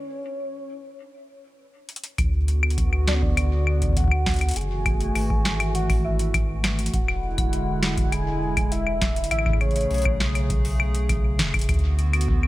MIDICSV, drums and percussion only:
0, 0, Header, 1, 2, 480
1, 0, Start_track
1, 0, Tempo, 594059
1, 1765, Time_signature, 4, 2, 24, 8
1, 10079, End_track
2, 0, Start_track
2, 0, Title_t, "Drums"
2, 1525, Note_on_c, 9, 42, 54
2, 1585, Note_off_c, 9, 42, 0
2, 1585, Note_on_c, 9, 42, 65
2, 1645, Note_off_c, 9, 42, 0
2, 1645, Note_on_c, 9, 42, 74
2, 1725, Note_off_c, 9, 42, 0
2, 1765, Note_on_c, 9, 36, 105
2, 1765, Note_on_c, 9, 42, 72
2, 1765, Note_on_c, 9, 75, 57
2, 1845, Note_off_c, 9, 42, 0
2, 1845, Note_off_c, 9, 75, 0
2, 1846, Note_off_c, 9, 36, 0
2, 2005, Note_on_c, 9, 42, 39
2, 2086, Note_off_c, 9, 42, 0
2, 2125, Note_on_c, 9, 75, 85
2, 2185, Note_on_c, 9, 42, 56
2, 2206, Note_off_c, 9, 75, 0
2, 2245, Note_off_c, 9, 42, 0
2, 2245, Note_on_c, 9, 36, 120
2, 2245, Note_on_c, 9, 42, 68
2, 2326, Note_off_c, 9, 36, 0
2, 2326, Note_off_c, 9, 42, 0
2, 2365, Note_on_c, 9, 75, 55
2, 2446, Note_off_c, 9, 75, 0
2, 2485, Note_on_c, 9, 38, 118
2, 2485, Note_on_c, 9, 42, 38
2, 2566, Note_off_c, 9, 38, 0
2, 2566, Note_off_c, 9, 42, 0
2, 2605, Note_on_c, 9, 36, 101
2, 2665, Note_off_c, 9, 36, 0
2, 2665, Note_on_c, 9, 36, 80
2, 2725, Note_off_c, 9, 36, 0
2, 2725, Note_on_c, 9, 36, 69
2, 2725, Note_on_c, 9, 42, 69
2, 2725, Note_on_c, 9, 75, 85
2, 2785, Note_off_c, 9, 36, 0
2, 2785, Note_on_c, 9, 36, 58
2, 2806, Note_off_c, 9, 42, 0
2, 2806, Note_off_c, 9, 75, 0
2, 2866, Note_off_c, 9, 36, 0
2, 2965, Note_on_c, 9, 75, 57
2, 3046, Note_off_c, 9, 75, 0
2, 3085, Note_on_c, 9, 36, 54
2, 3085, Note_on_c, 9, 42, 54
2, 3115, Note_off_c, 9, 36, 0
2, 3115, Note_on_c, 9, 36, 62
2, 3145, Note_off_c, 9, 36, 0
2, 3145, Note_on_c, 9, 36, 70
2, 3166, Note_off_c, 9, 42, 0
2, 3175, Note_off_c, 9, 36, 0
2, 3175, Note_on_c, 9, 36, 79
2, 3205, Note_off_c, 9, 36, 0
2, 3205, Note_on_c, 9, 36, 82
2, 3205, Note_on_c, 9, 42, 71
2, 3235, Note_off_c, 9, 36, 0
2, 3235, Note_on_c, 9, 36, 88
2, 3265, Note_off_c, 9, 36, 0
2, 3265, Note_on_c, 9, 36, 100
2, 3286, Note_off_c, 9, 42, 0
2, 3295, Note_off_c, 9, 36, 0
2, 3295, Note_on_c, 9, 36, 105
2, 3325, Note_on_c, 9, 75, 83
2, 3376, Note_off_c, 9, 36, 0
2, 3406, Note_off_c, 9, 75, 0
2, 3445, Note_on_c, 9, 36, 106
2, 3445, Note_on_c, 9, 38, 123
2, 3445, Note_on_c, 9, 42, 25
2, 3465, Note_off_c, 9, 42, 0
2, 3465, Note_on_c, 9, 42, 29
2, 3486, Note_off_c, 9, 42, 0
2, 3486, Note_on_c, 9, 42, 35
2, 3505, Note_off_c, 9, 42, 0
2, 3505, Note_on_c, 9, 42, 39
2, 3525, Note_off_c, 9, 42, 0
2, 3525, Note_on_c, 9, 42, 44
2, 3526, Note_off_c, 9, 36, 0
2, 3526, Note_off_c, 9, 38, 0
2, 3545, Note_off_c, 9, 42, 0
2, 3545, Note_on_c, 9, 42, 48
2, 3565, Note_off_c, 9, 42, 0
2, 3565, Note_on_c, 9, 42, 51
2, 3565, Note_on_c, 9, 75, 56
2, 3625, Note_off_c, 9, 42, 0
2, 3625, Note_on_c, 9, 42, 64
2, 3645, Note_off_c, 9, 42, 0
2, 3645, Note_on_c, 9, 42, 54
2, 3646, Note_off_c, 9, 75, 0
2, 3665, Note_off_c, 9, 42, 0
2, 3665, Note_on_c, 9, 42, 44
2, 3685, Note_off_c, 9, 42, 0
2, 3685, Note_on_c, 9, 42, 73
2, 3705, Note_off_c, 9, 42, 0
2, 3705, Note_on_c, 9, 42, 30
2, 3725, Note_off_c, 9, 42, 0
2, 3725, Note_on_c, 9, 42, 25
2, 3806, Note_off_c, 9, 42, 0
2, 3925, Note_on_c, 9, 36, 122
2, 3925, Note_on_c, 9, 42, 39
2, 3925, Note_on_c, 9, 75, 83
2, 4006, Note_off_c, 9, 36, 0
2, 4006, Note_off_c, 9, 42, 0
2, 4006, Note_off_c, 9, 75, 0
2, 4044, Note_on_c, 9, 42, 55
2, 4125, Note_off_c, 9, 42, 0
2, 4165, Note_on_c, 9, 46, 60
2, 4165, Note_on_c, 9, 75, 53
2, 4245, Note_off_c, 9, 46, 0
2, 4245, Note_off_c, 9, 75, 0
2, 4285, Note_on_c, 9, 36, 111
2, 4366, Note_off_c, 9, 36, 0
2, 4405, Note_on_c, 9, 38, 123
2, 4405, Note_on_c, 9, 42, 39
2, 4486, Note_off_c, 9, 38, 0
2, 4486, Note_off_c, 9, 42, 0
2, 4525, Note_on_c, 9, 42, 57
2, 4525, Note_on_c, 9, 75, 83
2, 4606, Note_off_c, 9, 42, 0
2, 4606, Note_off_c, 9, 75, 0
2, 4645, Note_on_c, 9, 42, 67
2, 4726, Note_off_c, 9, 42, 0
2, 4764, Note_on_c, 9, 46, 60
2, 4764, Note_on_c, 9, 75, 54
2, 4765, Note_on_c, 9, 36, 124
2, 4845, Note_off_c, 9, 46, 0
2, 4845, Note_off_c, 9, 75, 0
2, 4846, Note_off_c, 9, 36, 0
2, 5004, Note_on_c, 9, 42, 58
2, 5085, Note_off_c, 9, 42, 0
2, 5124, Note_on_c, 9, 42, 71
2, 5124, Note_on_c, 9, 75, 86
2, 5125, Note_on_c, 9, 36, 109
2, 5205, Note_off_c, 9, 42, 0
2, 5205, Note_off_c, 9, 75, 0
2, 5206, Note_off_c, 9, 36, 0
2, 5364, Note_on_c, 9, 38, 124
2, 5364, Note_on_c, 9, 42, 56
2, 5364, Note_on_c, 9, 75, 55
2, 5445, Note_off_c, 9, 38, 0
2, 5445, Note_off_c, 9, 42, 0
2, 5445, Note_off_c, 9, 75, 0
2, 5484, Note_on_c, 9, 42, 53
2, 5544, Note_off_c, 9, 42, 0
2, 5544, Note_on_c, 9, 42, 72
2, 5604, Note_off_c, 9, 42, 0
2, 5604, Note_on_c, 9, 36, 121
2, 5604, Note_on_c, 9, 42, 70
2, 5685, Note_off_c, 9, 36, 0
2, 5685, Note_off_c, 9, 42, 0
2, 5724, Note_on_c, 9, 75, 77
2, 5805, Note_off_c, 9, 75, 0
2, 5964, Note_on_c, 9, 36, 114
2, 5964, Note_on_c, 9, 42, 57
2, 5964, Note_on_c, 9, 75, 53
2, 6044, Note_off_c, 9, 42, 0
2, 6044, Note_off_c, 9, 75, 0
2, 6045, Note_off_c, 9, 36, 0
2, 6084, Note_on_c, 9, 42, 66
2, 6165, Note_off_c, 9, 42, 0
2, 6323, Note_on_c, 9, 38, 121
2, 6323, Note_on_c, 9, 42, 37
2, 6404, Note_off_c, 9, 38, 0
2, 6404, Note_off_c, 9, 42, 0
2, 6444, Note_on_c, 9, 36, 122
2, 6444, Note_on_c, 9, 42, 55
2, 6525, Note_off_c, 9, 36, 0
2, 6525, Note_off_c, 9, 42, 0
2, 6564, Note_on_c, 9, 42, 70
2, 6564, Note_on_c, 9, 75, 52
2, 6645, Note_off_c, 9, 42, 0
2, 6645, Note_off_c, 9, 75, 0
2, 6924, Note_on_c, 9, 36, 113
2, 6924, Note_on_c, 9, 42, 55
2, 6924, Note_on_c, 9, 75, 79
2, 7005, Note_off_c, 9, 36, 0
2, 7005, Note_off_c, 9, 42, 0
2, 7005, Note_off_c, 9, 75, 0
2, 7044, Note_on_c, 9, 42, 68
2, 7125, Note_off_c, 9, 42, 0
2, 7164, Note_on_c, 9, 75, 52
2, 7245, Note_off_c, 9, 75, 0
2, 7284, Note_on_c, 9, 36, 125
2, 7284, Note_on_c, 9, 38, 125
2, 7284, Note_on_c, 9, 42, 55
2, 7365, Note_off_c, 9, 36, 0
2, 7365, Note_off_c, 9, 38, 0
2, 7365, Note_off_c, 9, 42, 0
2, 7404, Note_on_c, 9, 42, 51
2, 7464, Note_off_c, 9, 42, 0
2, 7464, Note_on_c, 9, 42, 67
2, 7524, Note_off_c, 9, 42, 0
2, 7524, Note_on_c, 9, 42, 67
2, 7524, Note_on_c, 9, 75, 75
2, 7584, Note_off_c, 9, 75, 0
2, 7584, Note_on_c, 9, 75, 61
2, 7605, Note_off_c, 9, 42, 0
2, 7644, Note_off_c, 9, 75, 0
2, 7644, Note_on_c, 9, 36, 106
2, 7644, Note_on_c, 9, 75, 50
2, 7674, Note_off_c, 9, 36, 0
2, 7674, Note_on_c, 9, 36, 88
2, 7704, Note_off_c, 9, 36, 0
2, 7704, Note_off_c, 9, 75, 0
2, 7704, Note_on_c, 9, 36, 70
2, 7704, Note_on_c, 9, 75, 39
2, 7734, Note_off_c, 9, 36, 0
2, 7734, Note_on_c, 9, 36, 57
2, 7764, Note_off_c, 9, 75, 0
2, 7764, Note_on_c, 9, 42, 17
2, 7764, Note_on_c, 9, 75, 52
2, 7765, Note_off_c, 9, 36, 0
2, 7765, Note_on_c, 9, 36, 48
2, 7795, Note_off_c, 9, 36, 0
2, 7795, Note_on_c, 9, 36, 38
2, 7825, Note_off_c, 9, 36, 0
2, 7825, Note_on_c, 9, 36, 30
2, 7844, Note_off_c, 9, 42, 0
2, 7844, Note_on_c, 9, 42, 22
2, 7845, Note_off_c, 9, 75, 0
2, 7855, Note_off_c, 9, 36, 0
2, 7855, Note_on_c, 9, 36, 25
2, 7884, Note_off_c, 9, 42, 0
2, 7884, Note_on_c, 9, 42, 54
2, 7924, Note_off_c, 9, 42, 0
2, 7924, Note_on_c, 9, 42, 29
2, 7936, Note_off_c, 9, 36, 0
2, 8004, Note_on_c, 9, 46, 27
2, 8005, Note_off_c, 9, 42, 0
2, 8034, Note_off_c, 9, 46, 0
2, 8034, Note_on_c, 9, 46, 34
2, 8064, Note_off_c, 9, 46, 0
2, 8064, Note_on_c, 9, 46, 41
2, 8094, Note_off_c, 9, 46, 0
2, 8094, Note_on_c, 9, 46, 49
2, 8124, Note_on_c, 9, 75, 76
2, 8125, Note_on_c, 9, 36, 125
2, 8175, Note_off_c, 9, 46, 0
2, 8205, Note_off_c, 9, 75, 0
2, 8206, Note_off_c, 9, 36, 0
2, 8245, Note_on_c, 9, 38, 121
2, 8245, Note_on_c, 9, 42, 36
2, 8325, Note_off_c, 9, 38, 0
2, 8325, Note_off_c, 9, 42, 0
2, 8365, Note_on_c, 9, 42, 53
2, 8365, Note_on_c, 9, 75, 50
2, 8445, Note_off_c, 9, 42, 0
2, 8445, Note_off_c, 9, 75, 0
2, 8484, Note_on_c, 9, 42, 65
2, 8485, Note_on_c, 9, 36, 112
2, 8565, Note_off_c, 9, 42, 0
2, 8566, Note_off_c, 9, 36, 0
2, 8604, Note_on_c, 9, 46, 60
2, 8685, Note_off_c, 9, 46, 0
2, 8725, Note_on_c, 9, 75, 78
2, 8805, Note_off_c, 9, 75, 0
2, 8844, Note_on_c, 9, 42, 54
2, 8925, Note_off_c, 9, 42, 0
2, 8964, Note_on_c, 9, 42, 69
2, 8964, Note_on_c, 9, 75, 52
2, 8965, Note_on_c, 9, 36, 119
2, 9045, Note_off_c, 9, 42, 0
2, 9045, Note_off_c, 9, 75, 0
2, 9046, Note_off_c, 9, 36, 0
2, 9204, Note_on_c, 9, 38, 127
2, 9204, Note_on_c, 9, 42, 52
2, 9285, Note_off_c, 9, 38, 0
2, 9285, Note_off_c, 9, 42, 0
2, 9325, Note_on_c, 9, 36, 106
2, 9325, Note_on_c, 9, 42, 47
2, 9325, Note_on_c, 9, 75, 79
2, 9365, Note_off_c, 9, 42, 0
2, 9365, Note_on_c, 9, 42, 38
2, 9385, Note_off_c, 9, 42, 0
2, 9385, Note_on_c, 9, 42, 67
2, 9405, Note_off_c, 9, 42, 0
2, 9405, Note_on_c, 9, 42, 31
2, 9406, Note_off_c, 9, 36, 0
2, 9406, Note_off_c, 9, 75, 0
2, 9445, Note_off_c, 9, 42, 0
2, 9445, Note_on_c, 9, 36, 103
2, 9445, Note_on_c, 9, 42, 67
2, 9445, Note_on_c, 9, 75, 52
2, 9485, Note_off_c, 9, 42, 0
2, 9485, Note_on_c, 9, 42, 21
2, 9525, Note_off_c, 9, 42, 0
2, 9525, Note_on_c, 9, 42, 18
2, 9526, Note_off_c, 9, 36, 0
2, 9526, Note_off_c, 9, 75, 0
2, 9606, Note_off_c, 9, 42, 0
2, 9685, Note_on_c, 9, 42, 36
2, 9766, Note_off_c, 9, 42, 0
2, 9805, Note_on_c, 9, 42, 52
2, 9805, Note_on_c, 9, 75, 79
2, 9865, Note_off_c, 9, 42, 0
2, 9865, Note_on_c, 9, 42, 66
2, 9885, Note_off_c, 9, 75, 0
2, 9925, Note_on_c, 9, 36, 121
2, 9946, Note_off_c, 9, 42, 0
2, 10006, Note_off_c, 9, 36, 0
2, 10045, Note_on_c, 9, 75, 51
2, 10079, Note_off_c, 9, 75, 0
2, 10079, End_track
0, 0, End_of_file